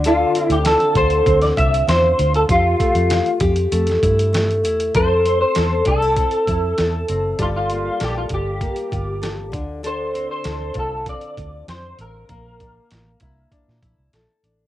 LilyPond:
<<
  \new Staff \with { instrumentName = "Clean electric guitar" } { \time 4/4 \key f \major \tempo 4 = 98 f'8. g'16 a'8 c''8. d''16 e''8 c''8. a'16 | f'4. r2 r8 | c''8. c''8. a'2~ a'8 | f'16 f'8. g'16 f'16 g'2 r8 |
c''8. c''8. a'8 d''4 c''8 bes'8~ | bes'2. r4 | }
  \new Staff \with { instrumentName = "Nylon-string guitar" } { \time 4/4 \key f \major <d a'>8 c'8 f'8 a'8 c'8 f'8 c'8 f'8 | g'8 a4 g'8 a8 e'8 a8 e'8 | a'8 c'8 a'8 d'16 e'16 c'8 e'8 a'8 c'8 | <g a'>8 bes8 a'8 f'8 bes8 f'8 a'8 d8 |
<d a'>8 c'8 a'8 f'8 c'8 f'4 c'8 | bes8 d'4 e'8 d'8 e'8 a'8 d'8 | }
  \new Staff \with { instrumentName = "Fingered electric bass" } { \clef bass \time 4/4 \key f \major d,8 r16 d,8 r16 d,8 d,8 c,8 e,8 d,8 | f,8 r16 f,8 r16 f,8 f,8 g,4 e,8 | f,4 e,8 c,8. r16 f,8 e,8 ges,,8 | g,,4 bes,,8 g,,8. r16 g,,4 d,8~ |
d,4 d,8 c,8. r16 d,8 f,8 a,,8 | bes,,4 a,,8 c,8 r16 bes,16 bes,,16 c,16 bes,,16 r16 a,,8 | }
  \new DrumStaff \with { instrumentName = "Drums" } \drummode { \time 4/4 hh8 hh16 hh16 <hh sn>16 hh16 <hh bd>16 hh16 <hh bd>16 <hh sn>16 <hh bd>16 hh16 <hh sn>8 hh16 hh16 | <hh bd>8 <hh bd>16 hh16 <hh sn>16 hh16 <hh bd>16 hh16 hh16 <hh sn>16 <hh bd>16 hh16 <hh sn>16 hh16 hh16 hh16 | <hh bd>8 hh8 <hh sn>8 <hh bd>8 <hh bd>16 hh16 <hh bd>8 <hh sn>8 hh8 | <hh bd>8 hh8 <hh sn>8 <hh bd>8 <hh bd>16 hh16 <hh bd>8 <hh sn>8 <hh bd>8 |
hh8 hh8 <hh sn>8 <hh bd>8 <hh bd>16 hh16 <hh bd>8 <hh sn>8 hh8 | <hh bd>8 <hh bd>8 <hh sn>8 <hh bd>8 <hh bd>16 sn16 <hh bd>8 <hh sn>8 hh8 | }
>>